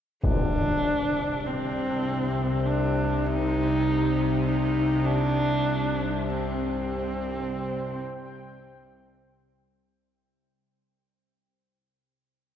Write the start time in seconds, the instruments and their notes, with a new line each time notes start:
0.23 synth drone C2 C3, horsehead fiddle D4, singing bowl C5, impact
1.46 horsehead fiddle C4
2.66 horsehead fiddle D4
3.26 horsehead fiddle D#4
4.47 horsehead fiddle D#4
5.05 horsehead fiddle D4
5.10 analog synth pad G3
5.40 analog synth pad C4
6.30 horsehead fiddle C4
6.42 analog synth pad C5
7.27 analog synth pad G5